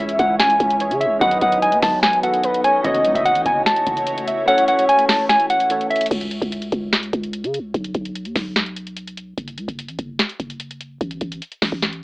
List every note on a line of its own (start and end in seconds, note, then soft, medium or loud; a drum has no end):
0.00 0.18 C#2 loud
0.00 0.77 E3 medium
0.00 0.78 G#3 medium
0.00 1.20 G#3 medium
0.00 0.78 C#4 medium
0.00 1.18 C#4 medium
0.00 1.17 E4 medium
0.00 0.79 G#4 medium
0.00 0.79 C#5 medium
0.00 1.17 C#5 medium
0.00 0.14 E5 medium
0.00 0.35 E5 loud
0.09 closed hi-hat medium
0.19 0.58 C#2 loud
0.19 0.35 F#5 medium
0.19 kick loud
0.19 closed hi-hat medium
0.40 0.97 G#5 loud
0.40 snare loud
0.40 closed hi-hat medium
0.50 closed hi-hat medium
0.60 0.92 C#2 loud
0.60 kick medium
0.60 closed hi-hat medium
0.70 closed hi-hat medium
0.80 1.21 E3 medium
0.80 1.21 G#3 soft
0.80 1.21 C#4 soft
0.80 1.21 G#4 soft
0.80 1.22 C#5 medium
0.80 closed hi-hat medium
0.91 1.07 C#3 loud
0.91 closed hi-hat medium
1.01 1.16 E5 medium
1.01 closed hi-hat medium
1.06 1.21 C#2 loud
1.19 1.41 B1 loud
1.19 2.20 D#3 medium
1.19 2.21 F#3 medium
1.19 2.21 B3 medium
1.19 2.83 B3 medium
1.19 2.83 D#4 medium
1.19 4.45 F#4 medium
1.19 2.22 F#4 medium
1.19 2.22 B4 medium
1.19 1.99 D#5 loud
1.19 2.83 D#5 medium
1.19 1.37 F#5 loud
1.19 kick loud
1.19 closed hi-hat medium
1.31 closed hi-hat medium
1.41 1.74 B1 loud
1.41 1.58 F#5 medium
1.41 kick medium
1.41 closed hi-hat medium
1.52 closed hi-hat medium
1.62 1.78 G#5 medium
1.62 closed hi-hat medium
1.72 1.82 D#2 loud
1.72 closed hi-hat medium
1.82 2.81 B1 loud
1.82 1.98 A5 medium
1.82 kick loud
1.82 snare loud
1.82 open hi-hat medium
2.03 2.18 G#5 loud
2.03 snare loud
2.03 closed hi-hat medium
2.13 closed hi-hat soft
2.22 2.84 D#3 medium
2.22 2.84 F#3 soft
2.22 2.84 B3 medium
2.22 2.85 F#4 soft
2.22 2.85 A4 medium
2.22 2.62 F#5 medium
2.22 closed hi-hat medium
2.34 closed hi-hat medium
2.43 2.63 B4 medium
2.43 closed hi-hat medium
2.54 closed hi-hat medium
2.64 2.83 C#5 medium
2.64 2.80 G#5 medium
2.64 closed hi-hat medium
2.83 3.07 F#1 loud
2.83 4.44 E3 medium
2.83 4.44 A3 medium
2.83 6.08 A3 medium
2.83 4.45 C#4 medium
2.83 6.08 E4 medium
2.83 4.45 F#4 medium
2.83 6.08 C#5 loud
2.83 4.46 C#5 medium
2.83 3.13 D#5 loud
2.83 3.62 D#5 loud
2.83 kick loud
2.83 closed hi-hat medium
2.95 closed hi-hat medium
3.05 3.14 C#2 loud
3.05 closed hi-hat medium
3.15 3.37 F#1 loud
3.15 3.23 E5 medium
3.15 kick loud
3.15 closed hi-hat medium
3.25 3.41 F#5 medium
3.25 closed hi-hat medium
3.35 3.45 A1 loud
3.35 closed hi-hat medium
3.46 3.65 F#1 loud
3.46 3.62 G#5 medium
3.46 kick loud
3.46 closed hi-hat medium
3.66 4.24 A5 medium
3.66 snare loud
3.66 closed hi-hat medium
3.76 closed hi-hat medium
3.87 4.45 F#1 loud
3.87 kick medium
3.87 closed hi-hat medium
3.97 closed hi-hat medium
4.07 closed hi-hat loud
4.18 closed hi-hat medium
4.28 4.43 E5 medium
4.28 closed hi-hat medium
4.46 5.67 E3 medium
4.46 5.67 A3 medium
4.46 5.67 C#4 medium
4.46 6.10 C#4 medium
4.46 5.68 A4 medium
4.46 5.25 C#5 loud
4.46 5.68 C#5 medium
4.46 4.63 F#5 loud
4.46 closed hi-hat medium
4.58 closed hi-hat medium
4.68 4.84 F#5 medium
4.68 closed hi-hat medium
4.79 closed hi-hat medium
4.89 5.04 G#5 medium
4.89 closed hi-hat medium
4.99 closed hi-hat medium
5.09 5.24 A5 medium
5.09 snare loud
5.09 open hi-hat medium
5.29 5.45 G#5 loud
5.29 snare loud
5.29 closed hi-hat medium
5.40 closed hi-hat soft
5.50 5.88 F#5 medium
5.50 closed hi-hat medium
5.60 closed hi-hat medium
5.70 6.11 E3 medium
5.70 6.11 A3 soft
5.70 6.11 C#4 soft
5.70 6.11 A4 soft
5.70 6.12 C#5 medium
5.70 closed hi-hat medium
5.81 closed hi-hat medium
5.90 6.06 E5 medium
5.90 closed hi-hat medium
5.96 closed hi-hat medium
6.01 closed hi-hat medium
6.06 closed hi-hat medium
6.11 6.40 C#2 loud
6.11 kick loud
6.11 closed hi-hat medium
6.11 crash medium
6.21 closed hi-hat medium
6.31 closed hi-hat medium
6.42 6.71 C#2 loud
6.42 kick medium
6.42 closed hi-hat medium
6.52 closed hi-hat medium
6.62 closed hi-hat soft
6.72 7.11 C#2 loud
6.72 kick loud
6.72 closed hi-hat medium
6.93 snare loud
6.93 closed hi-hat medium
7.03 closed hi-hat soft
7.13 7.45 C#2 loud
7.13 kick medium
7.13 closed hi-hat medium
7.23 closed hi-hat medium
7.33 closed hi-hat medium
7.44 7.61 C#3 loud
7.44 closed hi-hat medium
7.54 closed hi-hat medium
7.59 7.74 C#2 loud
7.74 7.94 B1 loud
7.74 kick loud
7.74 closed hi-hat medium
7.84 closed hi-hat medium
7.95 8.27 B1 loud
7.95 kick medium
7.95 closed hi-hat medium
8.05 closed hi-hat medium
8.16 closed hi-hat medium
8.25 8.35 D#2 loud
8.25 closed hi-hat soft
8.36 9.34 B1 loud
8.36 kick loud
8.36 snare loud
8.36 open hi-hat medium
8.56 snare loud
8.56 closed hi-hat medium
8.66 closed hi-hat soft
8.77 closed hi-hat medium
8.87 closed hi-hat medium
8.97 closed hi-hat medium
9.08 closed hi-hat medium
9.17 closed hi-hat medium
9.38 9.60 F#1 loud
9.38 kick loud
9.38 closed hi-hat medium
9.48 closed hi-hat medium
9.58 9.68 C#2 loud
9.58 closed hi-hat medium
9.68 9.90 F#1 loud
9.68 kick medium
9.68 closed hi-hat medium
9.79 closed hi-hat medium
9.88 9.98 A1 loud
9.88 closed hi-hat soft
9.99 10.18 F#1 loud
9.99 kick loud
9.99 closed hi-hat medium
10.19 snare loud
10.19 closed hi-hat medium
10.29 closed hi-hat soft
10.40 10.98 F#1 loud
10.40 kick medium
10.40 closed hi-hat medium
10.50 closed hi-hat medium
10.60 closed hi-hat medium
10.71 closed hi-hat medium
10.81 closed hi-hat medium
11.01 11.20 A1 loud
11.01 kick loud
11.01 closed hi-hat medium
11.11 closed hi-hat medium
11.21 11.41 A1 loud
11.21 kick medium
11.21 closed hi-hat medium
11.32 closed hi-hat medium
11.42 closed hi-hat medium
11.52 closed hi-hat soft
11.62 11.72 A1 loud
11.62 kick loud
11.62 snare loud
11.62 open hi-hat medium
11.72 12.04 A1 loud
11.72 kick loud
11.82 snare loud
11.82 closed hi-hat medium
11.93 closed hi-hat soft